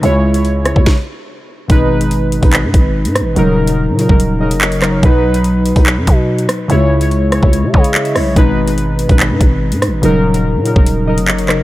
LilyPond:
<<
  \new Staff \with { instrumentName = "Synth keys" } { \time 4/4 \key gis \minor \tempo 4 = 144 << { r1 | r1 | r2 r8 dis''8 cis''8 ais'8 | r1 |
r2 r8 dis''8 e''4 | r1 | r2 r8 dis''8 cis''8 ais'8 | } \\ { <cis gis e' cis''>8 r16 <cis gis e' cis''>8 r16 <cis gis e' cis''>16 <cis gis e' cis''>8 r4. r16 | <b, gis dis' b'>8 r16 <b, gis dis' b'>8. r16 <b, gis dis' b'>4~ <b, gis dis' b'>16 r4 | <cis fis dis' ais'>8 r16 <cis fis dis' ais'>8 r16 <cis fis dis' ais'>16 <cis fis dis' ais'>8 r16 <cis fis dis' ais'>8. r16 <cis fis dis' ais'>16 r16 | <b, fis dis' b'>8 r16 <b, fis dis' b'>8. r16 <b, fis dis' b'>4~ <b, fis dis' b'>16 r4 |
<cis gis e' cis''>8 r16 <cis gis e' cis''>8 r16 <cis gis e' cis''>16 <cis gis e' cis''>8 r16 <cis gis e' cis''>8. r16 <cis gis e' cis''>16 r16 | <b, gis dis' b'>8 r16 <b, gis dis' b'>8. r16 <b, gis dis' b'>4~ <b, gis dis' b'>16 r4 | <cis fis dis' ais'>8 r16 <cis fis dis' ais'>8 r16 <cis fis dis' ais'>16 <cis fis dis' ais'>8 r16 <cis fis dis' ais'>8. r16 <cis fis dis' ais'>16 r16 | } >> }
  \new Staff \with { instrumentName = "808-style bass" } { \clef bass \time 4/4 \key gis \minor cis,4.~ cis,16 cis,16 r2 | gis,,4.~ gis,,16 gis,,8 gis,16 gis,,8. gis,16. gis,,16. | dis,,4~ dis,,16 ais,8 dis,,4 fis,,4~ fis,,16 | b,,4.~ b,,16 b,,8 fis,16 b,4 r8 |
cis,4.~ cis,16 cis,8 cis16 cis4 b,,8 | gis,,4.~ gis,,16 gis,,8 gis,16 gis,,8. gis,16. gis,,16. | dis,,4~ dis,,16 ais,8 dis,,4 fis,,4~ fis,,16 | }
  \new DrumStaff \with { instrumentName = "Drums" } \drummode { \time 4/4 hh8. hh16 hh8 <hh ss>16 bd16 <bd sn>4 r4 | <hh bd>8. hh16 hh8 hh16 <hh bd>16 hc8 <hh bd>8 r16 hh16 <hh ss>8 | hh8. hh16 r8 hh16 bd16 hh8. hh16 hc16 hh16 <hc ss>8 | <hh bd>8. hh16 hh8 hh16 <hh bd>16 hc8 <hh bd>8 r16 hh16 <hh ss>8 |
hh8. hh16 hh8 <hh ss>16 bd16 hh8 bd16 hh16 hc16 hh16 <hho ss>8 | <hh bd>8. hh16 hh8 hh16 <hh bd>16 hc8 <hh bd>8 r16 hh16 <hh ss>8 | hh8. hh16 r8 hh16 bd16 hh8. hh16 hc16 hh16 <hc ss>8 | }
>>